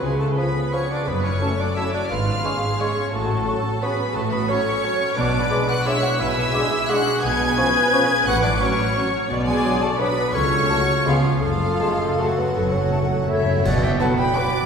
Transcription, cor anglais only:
\new Staff \with { instrumentName = "Cor anglais" } { \time 3/4 \key fis \minor \tempo 4 = 172 gis8 a8 b4 cis'8 d'8 | b8 cis'4 d'8 e'8 d'8 | eis'2 cis'4 | a4. r8 b4 |
a8 b8 cis'2 | d'4. fis'8 e'8 fis'8 | e'2 fis'4 | gis'2. |
fis'8 d'8 cis'2 | r8 gis4 a8 b4 | cis'2 eis4 | eis2 fis4~ |
fis2 e'4 | \key b \minor fis'8 g'8 a'8 b'8 d''4 | }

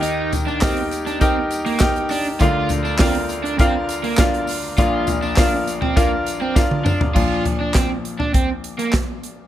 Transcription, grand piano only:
<<
  \new Staff \with { instrumentName = "Grand piano" } { \time 4/4 \key bes \major \tempo 4 = 101 <ees' g' bes' g''>4 <ees' g' bes' g''>4 <ees' g' bes' g''>4 <ees' g' bes' g''>4 | <d' f' bes' f''>4 <d' f' bes' f''>4 <d' f' bes' f''>4 <d' f' bes' f''>4 | <d' f' bes' f''>4 <d' f' bes' f''>4 <d' f' bes' f''>4 <d' f' bes' f''>4 | r1 | }
  \new Staff \with { instrumentName = "Grand piano" } { \clef bass \time 4/4 \key bes \major <ees, ees>2.~ <ees, ees>8 r8 | <d, d>1 | <bes,, bes,>1 | <bes, f d'>4. r2 r8 | }
>>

